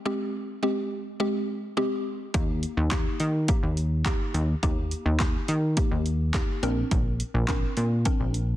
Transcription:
0.06 synth pluck G#3 C4 G4
0.63 synth pluck G#3 C4 G4
1.20 synth pluck G#3 C4 G4
1.77 synth pluck G#3 C4 G4
2.34 analog synth bass D#2, synth pluck A#3 D#4 G4, kick, closed hi-hat
2.63 closed hi-hat
2.77 analog synth bass D#2
2.91 synth pluck A#3 D#4 G4, kick, snare, clap, closed hi-hat
3.20 analog synth bass D#3, closed hi-hat
3.48 synth pluck A#3 D#4 G4, kick, closed hi-hat
3.63 analog synth bass D#2
3.77 closed hi-hat
4.05 synth pluck A#3 D#4 G4, kick, snare, clap, closed hi-hat
4.34 analog synth bass D#2, closed hi-hat
4.63 analog synth bass D#2, synth pluck A#3 D#4 G4, kick, closed hi-hat
4.91 closed hi-hat
5.06 analog synth bass D#2
5.20 synth pluck A#3 D#4 G4, kick, snare, clap, closed hi-hat
5.48 analog synth bass D#3, closed hi-hat
5.77 synth pluck A#3 D#4 G4, kick, closed hi-hat
5.91 analog synth bass D#2
6.06 closed hi-hat
6.34 synth pluck A#3 D#4 G4, kick, snare, clap, closed hi-hat
6.63 analog synth bass A#1, synth pluck C4 D4 A#4, closed hi-hat
6.91 analog synth bass A#1, kick, closed hi-hat
7.20 closed hi-hat
7.34 analog synth bass A#1
7.48 synth pluck C4 D4 A#4, kick, snare, clap, closed hi-hat
7.77 analog synth bass A#2, closed hi-hat
8.05 synth pluck C4 D4 A#4, kick, closed hi-hat
8.20 analog synth bass A#1
8.34 closed hi-hat

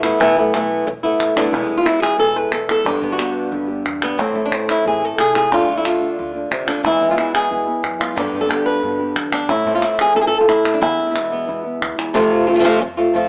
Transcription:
Already playing: upright bass E1
0.03 nylon-string guitar A3 B3 E4, clap
0.20 upright bass E1, nylon-string guitar E3 A3 B3 E4
0.37 upright bass B1, nylon-string guitar A3 B3 E4
0.54 nylon-string guitar E3 A3 B3 E4, clap
0.87 upright bass E1, muted nylon-string guitar stroke
1.03 nylon-string guitar A3 B3 E4
1.20 upright bass G#1, clap
1.36 upright bass E1, nylon-string guitar A3 B3 D4 E4, clap
1.52 upright bass E1, nylon-string guitar E2 G#3 B3 E4, muted nylon-string guitar stroke, clap
1.69 upright bass E1
1.76 nylon-string guitar E3 G#3 B3 E4 F4
1.81 nylon-string guitar E3 G#3 B3 E4
1.85 nylon-string guitar B2 E3 G#3 B3 E4, clap
2.02 nylon-string guitar G#4, clap
2.18 upright bass E1, nylon-string guitar B2 E3 G#3 B3 E4 A4
2.35 nylon-string guitar G#3 B3 E4 B4
2.52 upright bass E1, nylon-string guitar A4, muted nylon-string guitar stroke, clap
2.68 nylon-string guitar G#3 B3 E4 A4, clap
2.85 upright bass G1, nylon-string guitar G2 D3 B3 D4 G4, muted nylon-string guitar stroke, clap
3.02 upright bass G1, nylon-string guitar B3
3.09 nylon-string guitar D3 G3 B3 F#4 G4
3.13 nylon-string guitar D3 G3 B3 G4
3.18 nylon-string guitar B2 D3 G3 B3 G4, clap
3.51 upright bass G1, nylon-string guitar B2 D3 G3 B3 G4
3.68 nylon-string guitar G3 B3 G4
3.85 upright bass E2, muted nylon-string guitar stroke, clap
4.01 nylon-string guitar G3 B3 G4, clap
4.18 upright bass A1, nylon-string guitar A2 E3 A3 C4 E4, clap
4.34 upright bass A1, nylon-string guitar A3 C4 E4
4.46 nylon-string guitar D4
4.51 nylon-string guitar C4, muted nylon-string guitar stroke, clap
4.68 nylon-string guitar A3 C4 E4, clap
4.84 upright bass A1, nylon-string guitar E3 A3 C4 E4 G#4
5.01 nylon-string guitar A3 C4 E4
5.05 nylon-string guitar A4
5.18 upright bass C2, nylon-string guitar G#4, muted nylon-string guitar stroke, clap
5.34 nylon-string guitar A3 C4 E4 G#4, clap
5.51 upright bass D2, nylon-string guitar D3 A3 D4 F4, clap
5.67 upright bass D2, nylon-string guitar A3 D4 F4
5.78 nylon-string guitar E4
5.84 nylon-string guitar F4, muted nylon-string guitar stroke, clap
6.01 nylon-string guitar A3 D4 F4
6.17 upright bass D2, nylon-string guitar D3 A3 D4 F4
6.33 nylon-string guitar A3 D4 F4
6.50 upright bass D#2, nylon-string guitar C3, muted nylon-string guitar stroke, clap
6.66 nylon-string guitar D3 A3 D4 F4, clap
6.83 upright bass E2, nylon-string guitar E2 E3 G#3 B3 E4, muted nylon-string guitar stroke
7.00 upright bass E2, nylon-string guitar G#3 B3
7.08 nylon-string guitar E3 G#3 B3 E4 F4
7.12 nylon-string guitar E3 G#3 B3 E4
7.17 nylon-string guitar B2 E3 G#3 B3 E4, clap
7.35 nylon-string guitar G#4, clap
7.50 upright bass E2, nylon-string guitar B2 E3 G#3 B3 E4
7.66 nylon-string guitar G#3 B3 E4
7.83 upright bass F#2, muted nylon-string guitar stroke, clap
7.99 nylon-string guitar G#3 B3 E4 F4, clap
8.16 upright bass G2, nylon-string guitar G2 D3 B3 D4 G4, muted nylon-string guitar stroke, clap
8.33 upright bass G2, nylon-string guitar D3 G3 B3 G4
8.40 nylon-string guitar D3 G3 B3 G4 A4
8.45 nylon-string guitar D3 G3 B3 G4
8.49 nylon-string guitar B2 D3 G3 B3 G4, clap
8.66 nylon-string guitar B4
8.82 upright bass G2, nylon-string guitar B2 D3 G3 B3 G4
8.99 nylon-string guitar G3 B3 G4
9.16 upright bass E2, muted nylon-string guitar stroke, clap
9.31 nylon-string guitar G3 B3 D4 G4, clap
9.49 upright bass A2, nylon-string guitar A2 E4, muted nylon-string guitar stroke
9.65 upright bass A2, nylon-string guitar A3 C4
9.73 nylon-string guitar E3 A3 C4 E4 F4
9.77 nylon-string guitar E3 A3 C4 E4
9.82 nylon-string guitar E3 A3 C4 E4, clap
9.99 nylon-string guitar G#4, clap
10.14 upright bass A2, nylon-string guitar E3 A3 C4 E4 A4
10.21 nylon-string guitar G#4
10.27 nylon-string guitar E4 A4
10.33 nylon-string guitar A3 C4
10.41 nylon-string guitar F4
10.48 upright bass A2, nylon-string guitar E4, muted nylon-string guitar stroke, clap
10.64 nylon-string guitar A3 C4 E4, clap
10.74 nylon-string guitar D4
10.81 upright bass E2, nylon-string guitar E2 E4, muted nylon-string guitar stroke, clap
10.99 upright bass E2
11.06 nylon-string guitar E3 G#3 B3 E4
11.10 nylon-string guitar E3 G#3 B3 E4
11.15 nylon-string guitar B2 E3 G#3 B3 E4, clap
11.32 nylon-string guitar B3
11.47 upright bass E2, nylon-string guitar B2 E3 G#3 B3 E4
11.64 nylon-string guitar G#3 B3 E4
11.81 upright bass D2, muted nylon-string guitar stroke, clap
11.97 upright bass E2, nylon-string guitar E2 G#3 B3 E4, clap
12.14 upright bass F2, nylon-string guitar C3 F3 A3 C4 F4
12.31 upright bass C2
12.47 nylon-string guitar A3 C4 F4
12.54 nylon-string guitar F3 A3 C4 F4
12.59 nylon-string guitar F3 A3 C4 F4
12.64 nylon-string guitar C3 F3 A3 C4 F4
12.81 upright bass F2, muted nylon-string guitar stroke
12.97 nylon-string guitar A3 C4 F4
13.14 nylon-string guitar F3 A3 C4 F4

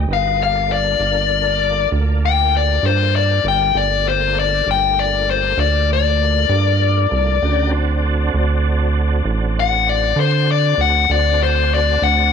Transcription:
0.08 analog synth bass G1, tonewheel organ B3 D#4 F#4 A#4
0.13 lead electric guitar F5
0.40 tonewheel organ A#3 D4 F4 A4, lead electric guitar F5
0.72 lead electric guitar D5
1.00 analog synth bass G1
1.92 analog synth bass D2
2.26 lead electric guitar G5
2.57 lead electric guitar D5
2.83 analog synth bass G2, lead electric guitar C5
3.16 lead electric guitar D5
3.44 analog synth bass G1
3.48 lead electric guitar G5
3.74 analog synth bass G1, tonewheel organ A3 A#3 D4 F4, lead electric guitar D5
4.09 lead electric guitar C5
4.39 lead electric guitar D5
4.67 analog synth bass G1
4.71 lead electric guitar G5
5.00 lead electric guitar D5
5.30 lead electric guitar C5
5.57 analog synth bass D2, lead electric guitar D5
5.93 lead electric guitar D5
6.49 analog synth bass G2
7.11 analog synth bass C2
7.42 analog synth bass D2, tonewheel organ C#3 F#4 G4 A#4
7.71 tonewheel organ C4 D4 F#4 A4
8.34 analog synth bass D2
9.25 analog synth bass A1
9.60 lead electric guitar F#5
9.89 lead electric guitar D5
10.16 analog synth bass D3, lead electric guitar C5
10.51 lead electric guitar D5
10.78 analog synth bass D2, lead electric guitar F#5
11.09 analog synth bass D2, tonewheel organ C4 D4 F#4 A4, lead electric guitar D5
11.43 lead electric guitar C5
11.74 lead electric guitar D5
12.02 analog synth bass D2, lead electric guitar F#5

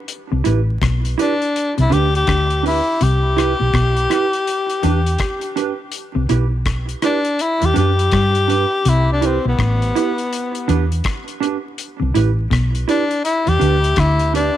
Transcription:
0.08 closed hi-hat
0.32 fingered electric bass C2, clean electric guitar C3
0.44 fingered electric bass A1, clean electric guitar A2 E4 G4 B4, closed hi-hat
0.82 fingered electric bass B1, clean electric guitar B2, kick, cross-stick, closed hi-hat
1.05 closed hi-hat
1.18 tenor saxophone D4, clean electric guitar E4 G4 B4, closed hi-hat
1.42 closed hi-hat
1.56 closed hi-hat
1.78 fingered electric bass C2, clean electric guitar C3, tenor saxophone E4, closed hi-hat
1.90 fingered electric bass D2, clean electric guitar D3 D4 G4 B4, tenor saxophone G4, closed hi-hat
2.15 tenor saxophone G4, closed hi-hat
2.27 fingered electric bass D2, clean electric guitar D3, kick, cross-stick, closed hi-hat
2.50 closed hi-hat
2.63 clean electric guitar D4 G4 B4, tenor saxophone E4, open hi-hat
3.01 fingered electric bass C2, clean electric guitar C3, tenor saxophone G4, closed hi-hat
3.37 clean electric guitar E4 G4 B4, cross-stick, closed hi-hat
3.60 fingered electric bass B1, clean electric guitar B2
3.74 fingered electric bass B1, clean electric guitar B2, kick, cross-stick, closed hi-hat
3.97 closed hi-hat
4.10 clean electric guitar E4 G4 B4, cross-stick, closed hi-hat
4.33 closed hi-hat
4.47 closed hi-hat
4.70 closed hi-hat
4.83 fingered electric bass E2, clean electric guitar E3 D4 G4 B4, closed hi-hat
5.06 closed hi-hat
5.19 kick, cross-stick, closed hi-hat
5.41 closed hi-hat
5.56 clean electric guitar D4 G4 B4, closed hi-hat
5.92 closed hi-hat
6.15 fingered electric bass C2, clean electric guitar C3
6.29 fingered electric bass B1, clean electric guitar B2 E4 G4 B4, closed hi-hat
6.66 kick, cross-stick, closed hi-hat
6.89 closed hi-hat
7.02 tenor saxophone D4, clean electric guitar E4 G4 B4, cross-stick, closed hi-hat
7.25 closed hi-hat
7.39 tenor saxophone E4, closed hi-hat
7.62 fingered electric bass E2, clean electric guitar E3, tenor saxophone G4, closed hi-hat
7.74 fingered electric bass F#2, clean electric guitar F#3 D4 G4 B4, tenor saxophone G4, closed hi-hat
7.99 closed hi-hat
8.11 fingered electric bass G2, clean electric guitar G3, kick, cross-stick, closed hi-hat
8.35 closed hi-hat
8.48 clean electric guitar D4 G4 B4, closed hi-hat
8.85 fingered electric bass C2, clean electric guitar C3, tenor saxophone E4, closed hi-hat
9.12 tenor saxophone D4
9.21 clean electric guitar E4 G4 B4, closed hi-hat
9.25 tenor saxophone C4
9.45 fingered electric bass B1, clean electric guitar B2, tenor saxophone B3
9.59 fingered electric bass A1, clean electric guitar A2, kick, cross-stick, closed hi-hat
9.82 closed hi-hat
9.95 clean electric guitar E4 G4 B4, closed hi-hat
10.18 closed hi-hat
10.33 closed hi-hat
10.55 closed hi-hat
10.68 fingered electric bass E2, clean electric guitar E3 D4 G4 B4, closed hi-hat
10.92 closed hi-hat
11.04 kick, cross-stick, closed hi-hat
11.28 closed hi-hat
11.40 clean electric guitar D4 G4 B4, closed hi-hat
11.78 closed hi-hat
12.00 fingered electric bass C2, clean electric guitar C3
12.14 fingered electric bass A1, clean electric guitar A2 E4 G4 B4, closed hi-hat
12.50 fingered electric bass B1, clean electric guitar B2, kick, cross-stick, closed hi-hat
12.75 closed hi-hat
12.88 tenor saxophone D4, clean electric guitar E4 G4 B4, closed hi-hat
13.11 closed hi-hat
13.25 tenor saxophone E4, closed hi-hat
13.47 fingered electric bass E2, clean electric guitar E3, tenor saxophone G4, closed hi-hat
13.59 fingered electric bass D2, clean electric guitar D3 D4 G4 B4, closed hi-hat
13.84 closed hi-hat
13.96 fingered electric bass D2, clean electric guitar D3, tenor saxophone E4, kick, cross-stick, closed hi-hat
14.19 closed hi-hat
14.34 clean electric guitar D4 G4 B4, tenor saxophone D4, closed hi-hat

